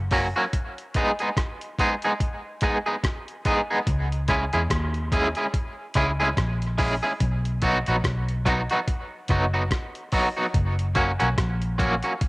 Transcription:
Already playing: F#1
0.11 F#3 A#3 C#4 F#4, kick, open hi-hat
0.36 F#3 A#3 C#4 F#4
0.53 kick, closed hi-hat
0.78 closed hi-hat
0.94 G#3 B3 D#4 G#4, kick, closed hi-hat
1.19 G#3 B3 D#4 G#4, closed hi-hat
1.37 kick, cross-stick, closed hi-hat
1.61 closed hi-hat
1.79 G#3 B3 D#4 G#4, kick, closed hi-hat
2.02 B3 D#4 G#4, closed hi-hat
2.07 G#3
2.20 kick, closed hi-hat
2.61 G#3 B3 D#4 G#4, kick, closed hi-hat
2.86 G#3 B3 D#4 G#4
3.04 kick, cross-stick, closed hi-hat
3.28 closed hi-hat
3.45 G#3 B3 D#4 G#4, kick, closed hi-hat
3.70 G#3 B3 D#4 G#4
3.87 C#2, kick, closed hi-hat
4.12 closed hi-hat
4.28 G#3 C#4 E4 G#4, kick, closed hi-hat
4.53 E2 G#3 C#4 E4 G#4, closed hi-hat
4.70 D#2, kick, cross-stick, closed hi-hat
4.94 closed hi-hat
5.12 G#3 C#4 E4 G#4, kick, closed hi-hat
5.35 G#3 C#4 E4 G#4, closed hi-hat
5.54 kick, closed hi-hat
5.94 C#2 G#3 C#4 E4 G#4, kick, cross-stick, closed hi-hat
6.20 G#3 C#4 E4 G#4
6.37 A#1, kick, cross-stick, closed hi-hat
6.62 closed hi-hat
6.78 G#3 C#4 E4 G#4, kick, open hi-hat
7.03 G#3 C#4 E4 G#4
7.20 B1, kick, closed hi-hat
7.45 closed hi-hat
7.62 F#3 B3 D#4 F#4, kick, closed hi-hat
7.86 A#1 F#3 B3 D#4 F#4, closed hi-hat
8.04 B1, kick, cross-stick, closed hi-hat
8.29 closed hi-hat
8.46 F#3 B3 D#4 F#4, kick, closed hi-hat
8.70 F#3 B3 D#4 F#4, closed hi-hat
8.88 kick, closed hi-hat
9.28 F#1 F#3 B3 D#4 F#4, kick, cross-stick, closed hi-hat
9.54 F#3 B3 D#4 F#4
9.71 kick, cross-stick, closed hi-hat
9.95 closed hi-hat
10.12 F#3 B3 D#4 F#4, kick, open hi-hat
10.37 F#3 B3 D#4 F#4
10.54 F#1, kick, closed hi-hat
10.79 closed hi-hat
10.95 F#3 A#3 C#4 F#4, kick, closed hi-hat
11.20 B1 F#3 A#3 C#4 F#4, closed hi-hat
11.38 A#1, kick, cross-stick, closed hi-hat
11.62 closed hi-hat
11.78 F#3 A#3 C#4 F#4, kick, closed hi-hat
12.03 F#3 A#3 C#4 F#4, closed hi-hat
12.21 kick, closed hi-hat

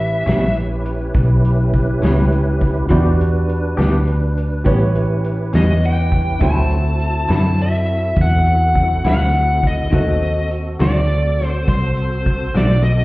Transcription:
Already playing: A1 C#4 E4 G4 B4 C#5 E5
0.26 A#1 A2 G3 B3 C#4, snare, closed hi-hat
0.57 closed hi-hat
0.85 closed hi-hat
1.14 B1, kick, closed hi-hat
1.45 closed hi-hat
1.74 kick, closed hi-hat
2.02 C#2 A2 G3 B3 C#4, snare, closed hi-hat
2.32 closed hi-hat
2.61 kick, closed hi-hat
2.88 E2 E3 B3 D4 F#4 G4 B4 D5, kick, closed hi-hat
3.21 closed hi-hat
3.49 closed hi-hat
3.77 D2 E3 B3 D4 G4, snare, closed hi-hat
4.07 closed hi-hat
4.37 closed hi-hat
4.64 A1 A2 G3 B3 C#4 E4 G4 B4 C#5, kick, closed hi-hat
4.95 closed hi-hat
5.24 closed hi-hat
5.53 E2 A2 G3 B3 C#4 D#5, snare, closed hi-hat
5.83 G5, closed hi-hat
6.12 kick, closed hi-hat
6.39 D2 D3 F#3 C4 E4 F#4 A4 C5 A5, kick, closed hi-hat
6.43 E4
6.71 closed hi-hat
6.99 closed hi-hat
7.29 F#2 D3 F#3 C4 E4 A5, snare, closed hi-hat
7.58 E5, closed hi-hat
7.87 closed hi-hat
8.16 E2, kick, closed hi-hat
8.21 F#5
8.46 closed hi-hat
8.75 kick, closed hi-hat
9.04 D2 D3 F#3 C4 E4, snare, closed hi-hat
9.09 F#5
9.34 closed hi-hat
9.63 D#5, kick, closed hi-hat
9.90 D#2 D#3 A3 C4 F#4 A4 C5, kick, closed hi-hat
10.23 closed hi-hat
10.51 closed hi-hat
10.79 D2 D#3 A3 C4 F#4 D5, snare, closed hi-hat
11.09 closed hi-hat
11.39 snare, closed hi-hat
11.45 C5
11.68 C2 C5, kick, closed hi-hat
11.97 closed hi-hat
12.26 kick, closed hi-hat
12.55 B1 D#3 A3 C4 F#4 D5, snare, closed hi-hat
12.84 D#5, closed hi-hat

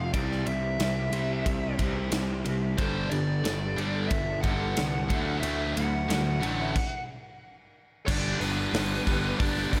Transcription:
Already playing: F1 F2 C3 F3 A3 C4 F4 F5
0.12 C2 C3 E3 G3 C4 G4 D5, kick, ride
0.32 snare
0.46 C2 C3 E3 G3 C4 G4 E5, ride
0.79 C2 C3 E3 G3 C4 G4, snare, ride
0.96 G3 C4 G4
1.12 C2 C3 G3 C4, muted clean electric guitar stroke, ride
1.30 G3 C4 G4
1.45 C2 C3 G3, kick, ride
1.62 G3 C4 G4
1.78 C2 C3 E3 G3 C4 G4, kick, ride
1.95 G3 C4 G4
2.11 C2 C3 E3 G3 C4 G4, snare, ride
2.28 G3 C4 G4
2.44 C2 C3 E3 G3 C4 G4, ride
2.77 G1 G2 D3 G3 D4 A4 C5, kick, ride
3.09 G1 G2 D3 G3 B3 D4 D5, ride
3.14 A4
3.45 G1 G2 D3 G3 B3 D4 A4, snare, ride
3.62 B3 D4 A4
3.77 G1 G2 D3 G3, muted clean electric guitar stroke, ride
3.95 B3 D4 A4
4.08 G1 G2 D3 E5, kick, ride
4.29 B3 D4 A4
4.41 G1 G2 D3 G3 B3 F#5, kick, ride
4.46 D4 A4
4.61 B3 D4 A4
4.76 C2 G2 D3 G3 B3 D4 A4, snare, ride
4.94 B3 D4 A4
5.09 D2 D3 F#3 A3 D4 E4, kick, ride
5.40 D2 D3 F#3 A3 D4 E5, ride
5.44 A3 D4 E4
5.74 D2 D3 F#3 A3 D4 F#5, ride
5.78 E4
6.08 D2 D3 F#3 A3 D4 E4, snare, ride
6.26 A3 D4 E4
6.41 A1 D3 F#3 A3 D4, muted clean electric guitar stroke, ride
6.60 A3 D4 E4
6.76 kick, crash
8.06 G1 G2 D3 G3 B3 D4 G4 D5 A5, kick, crash
8.40 G1 G2 D3 G3 B3 D4 B4, open hi-hat
8.73 G1 G2 D3 G3 B3 D4, snare, open hi-hat
9.07 G1 G2 D3 G3 B3 D4, kick, open hi-hat
9.39 G1 G2 D3 G3 B3 D4 D5, kick, open hi-hat
9.57 snare
9.72 D2 G2 D3 G3 B3 D4 D5, kick, open hi-hat

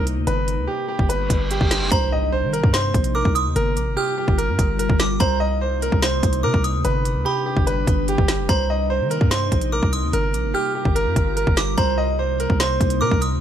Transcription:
Already playing: C2 C3 A#3 D#4
0.07 closed hi-hat
0.17 D2
0.27 G1 G3 D4 B4, closed hi-hat
0.48 closed hi-hat
0.58 D2
0.67 G4
0.88 G4
0.99 G1, kick
1.09 B4, closed hi-hat, reverse cymbal
1.30 G1, kick, closed hi-hat
1.51 G4, closed hi-hat
1.61 G1, kick
1.71 snare, closed hi-hat
1.81 F1
1.91 C2 C3 A#3 D#4 C5 A#5, kick, closed hi-hat, impact
2.12 D#5
2.32 C5
2.43 D#3
2.53 A#4, closed hi-hat
2.63 G2, kick
2.73 C5 C6, snare, closed hi-hat
2.94 A#1, kick, closed hi-hat
3.04 closed hi-hat
3.15 A#4 D6
3.25 C2, kick
3.35 D#6, closed hi-hat
3.46 D#2
3.56 G1 G3 F4 A#4, closed hi-hat
3.76 A#1, closed hi-hat
3.87 G1
3.97 G4 F6
4.18 G4
4.28 G1, kick
4.38 A#4, closed hi-hat
4.48 G2
4.59 G1, kick, closed hi-hat
4.79 A#4, closed hi-hat
4.90 G1, kick
5.00 D6, snare, closed hi-hat
5.20 C2 C3 A#3 D#4 C5 A#5, kick, closed hi-hat
5.40 D#5
5.61 C5
5.82 A#4, closed hi-hat
5.92 C2, kick
6.02 C5 C6, snare, closed hi-hat
6.23 C2, kick, closed hi-hat
6.33 closed hi-hat
6.43 C3 A#4 D6
6.54 C2, kick
6.64 D#6, closed hi-hat
6.74 D2
6.85 G1 G3 D4 B4, closed hi-hat
7.05 closed hi-hat
7.16 D2
7.25 G4 B5
7.46 G4
7.57 G1, kick
7.67 B4, closed hi-hat
7.87 G1, kick, closed hi-hat
8.08 G4, closed hi-hat
8.18 G1, kick
8.28 snare, closed hi-hat
8.39 F1
8.49 C2 C3 A#3 D#4 C5 A#5, kick, closed hi-hat
8.70 D#5
8.90 C5
9.00 D#3
9.10 A#4, closed hi-hat
9.21 G2, kick
9.31 C5 C6, snare, closed hi-hat
9.52 A#1, kick, closed hi-hat
9.61 closed hi-hat
9.72 A#4 D6
9.83 C2, kick
9.93 D#6, closed hi-hat
10.03 D#2
10.13 G1 G3 F4 A#4, closed hi-hat
10.34 A#1, closed hi-hat
10.44 G1
10.54 G4 F6
10.75 G4
10.85 G1, kick
10.95 A#4, closed hi-hat
11.06 G2
11.16 G1, kick, closed hi-hat
11.36 A#4, closed hi-hat
11.47 G1, kick
11.57 D6, snare, closed hi-hat
11.78 C2 C3 A#3 D#4 C5 A#5, kick, closed hi-hat
11.98 D#5
12.19 C5
12.40 A#4, closed hi-hat
12.50 C2, kick
12.60 C5 C6, snare, closed hi-hat
12.81 C2, kick, closed hi-hat
12.90 closed hi-hat
13.01 C3 A#4 D6
13.11 C2, kick
13.22 D#6, closed hi-hat
13.32 D2

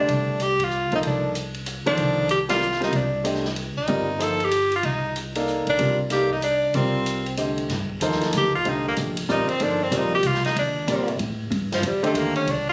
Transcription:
Already playing: D3 A3 G4 C5 D5
0.00 D4
0.08 C2, ride
0.40 G4, hi-hat pedal, ride
0.60 kick, ride
0.64 F4
0.71 hi-hat pedal
0.91 A#1 F3 A#3 D#4 A4 C5, ride
0.96 D#4
1.03 C2 D4, ride
1.35 hi-hat pedal, ride
1.54 ride
1.66 hi-hat pedal, ride
1.86 D#3 F3 A#3 D4 A4 C5, muted upright bass stroke, ride
1.97 C2, ride
2.29 G4, hi-hat pedal, ride
2.49 G3 C4 F4 A#4 D5, snare, ride
2.62 hi-hat pedal
2.72 snare
2.80 G3 C4 D#4 F4 A#4 C5, snare, ride
2.92 C2 D4, ride
3.24 A3 D4 G4 C5 D#5, hi-hat pedal, ride
3.34 snare
3.45 snare
3.56 ride
3.77 D#4, muted upright bass stroke
3.87 G1 G3 C4 F4 A#4 D5, ride
4.19 F3 A#3 D#4 A4 C5, hi-hat pedal, ride
4.40 G4, ride
4.51 hi-hat pedal, ride
4.72 ride
4.76 F4
4.83 C2 D#4, ride
5.16 hi-hat pedal, ride
5.35 A#3 D#4 A4 D5 F5, ride
5.47 hi-hat pedal
5.66 B1 D4, ride
5.79 C2 G3 C4 F4 A#4 D5, ride
6.10 A#3 D#4 G4 A4 D5 F5, snare, hi-hat pedal, ride
6.31 D#4, kick
6.42 D4, hi-hat pedal, ride
6.74 C2 G3 C4 F4 A#4 D5, ride
7.06 hi-hat pedal, ride
7.26 ride
7.37 D3 A3 G4 C5 D#5, hi-hat pedal, ride
7.58 ride
7.69 G2, snare, ride
7.89 kick
8.00 D#2 F3 A#3 D#4 A4 C5, hi-hat pedal, ride
8.12 snare
8.21 snare, ride
8.33 D2, hi-hat pedal, ride
8.38 G4
8.53 F4, muted upright bass stroke, kick
8.65 C2 D3 A3 G4 C5 D#5, ride
8.69 D#4
8.88 A#3
8.96 A#1, hi-hat pedal, ride
9.17 ride
9.29 A1 G3 C4 D#4 F4 A#4 D5, hi-hat pedal
9.49 C4, muted upright bass stroke, ride
9.60 G1 F3 A#3 D4 D#4 A4 C5, ride
9.83 C4
9.91 A#1 G3 C4 F4 A#4 D5, hi-hat pedal, ride
9.97 D#4
10.15 G4
10.23 C2 F4, hi-hat pedal, ride
10.34 snare
10.44 D#4, snare, ride
10.55 D#2 D4, ride
10.87 A#2 G3 C4 F4 A#4 D5, hi-hat pedal, ride
11.08 ride
11.19 A2, ride
11.50 G2, ride
11.72 F3, snare, ride
11.82 F2, hi-hat pedal, ride
11.87 G3
12.03 D3 A3 G4 C5 D#5, muted upright bass stroke, ride
12.14 D#2 A#3, hi-hat pedal, ride
12.36 C#4, ride
12.46 C2, ride
12.50 D4
12.69 F4

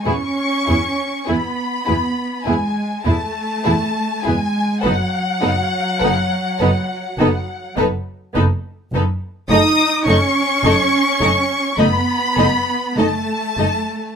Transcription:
0.03 E2 B3 C#4 E4 G#4 C#6
0.66 E2 B3 E4 G#4
1.27 E2 B3 E4 G#4 B5
1.85 E2 B3 E4 G#4
2.45 E2 G#3 B3 E4 G#4 G#5
3.04 E2 A3 B3 E4 G#4 A5
3.64 E2 B3 E4 G#4
4.22 E2 G#3 B3 E4 G#4 G#5
4.82 F#1 F#3 B3 D#4 A4 B4 F#5
5.41 F#1 B3 D#4 A4 B4
6.00 F#1 B3 D#4 A4 B4
6.60 F#1 B3 D#4 A4 B4
7.18 F#1 B3 D#4 A4 B4
7.75 F#1 B3 D#4 A4 B4
8.34 F#1 B3 D#4 A4 B4
8.93 F#1 B3 D#4 A4 B4
9.49 F#1 A3 D#4 A4 D#5 D#6
10.06 F#1 A3 C#4 D#4 A4 D#5 C#6
10.63 F#1 A3 D#4 A4 D#5
11.21 F#1 A3 D#4 A4 D#5
11.78 F#1 A3 B3 D#4 A4 D#5 B5
12.37 F#1 A3 D#4 A4 D#5
12.97 F#1 A3 D#4 A4 D#5 A5
13.57 F#1 A3 D#4 A4 D#5

